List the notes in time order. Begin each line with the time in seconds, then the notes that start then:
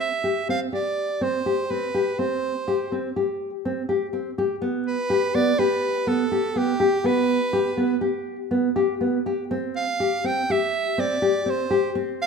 0.00 E5
0.24 G4
0.49 C4 F5
0.72 G4 D5
1.21 C4 C5
1.46 G4
1.70 C4 B4
1.94 G4
2.19 C4 C5
2.68 G4
2.92 C4
3.16 G4
3.65 C4
3.89 G4
4.13 C4
4.38 G4
4.62 B3
4.86 B4
5.10 G4
5.34 B3 D5
5.59 G4 B4
6.07 B3 A4
6.32 G4
6.56 B3 G4
6.80 G4
7.04 B3 B4
7.53 G4
7.77 B3
8.01 G4
8.51 B3
8.76 G4
9.01 B3
9.26 G4
9.51 C4
9.76 F5
10.00 G4
10.24 C4 G5
10.50 G4 E5
10.98 C4 D5
11.22 G4
11.46 C4 C5
11.70 G4
11.95 C4
12.22 F5